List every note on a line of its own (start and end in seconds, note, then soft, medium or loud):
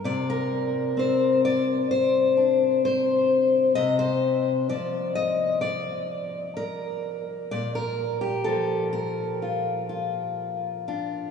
0.00 0.29 D4 soft
0.04 3.75 C3 medium
0.04 0.97 D5 medium
0.30 1.91 A#4 medium
0.97 3.71 C4 medium
0.97 1.44 C5 medium
1.45 1.91 D5 medium
1.91 2.84 C5 medium
2.37 3.77 D4 soft
2.85 3.75 C5 medium
3.75 4.70 C3 medium
3.75 3.99 D#5 loud
3.99 4.69 C5 medium
4.69 8.45 F3 medium
4.69 5.15 D5 medium
5.15 5.61 D#5 loud
5.61 7.50 D5 medium
6.57 7.51 A#4 medium
7.51 11.29 A#2 medium
7.51 7.75 D5 loud
7.75 8.21 A#4 medium
8.21 8.92 G4 medium
8.44 11.31 F3 medium
8.44 9.40 A4 medium
8.93 11.31 A#4 medium
9.42 9.88 F4 soft
9.89 10.87 F4 soft
10.88 11.31 D4 soft
10.88 11.30 F4 soft